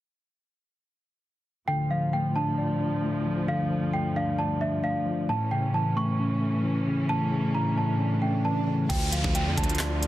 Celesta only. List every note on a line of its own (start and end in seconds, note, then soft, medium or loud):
1.68 1.88 G5 loud
1.91 2.10 F5 medium
2.13 2.33 G5 medium
2.36 3.44 A5 medium
3.48 3.91 F5 medium
3.93 4.13 G5 medium
4.16 4.36 F5 medium
4.39 4.58 A5 medium
4.61 4.81 E5 medium
4.84 5.26 F5 medium
5.29 5.49 A5 medium
5.51 5.71 G5 medium
5.74 5.94 A5 medium
5.97 7.05 C#6 medium
7.09 7.52 A5 loud
7.55 7.74 A#5 medium
7.77 8.20 A5 medium
8.22 8.42 G5 medium
8.45 8.87 A5 medium
8.89 9.09 G5 loud
9.12 9.32 F5 medium
9.35 9.55 G5 medium
9.57 10.07 A5 medium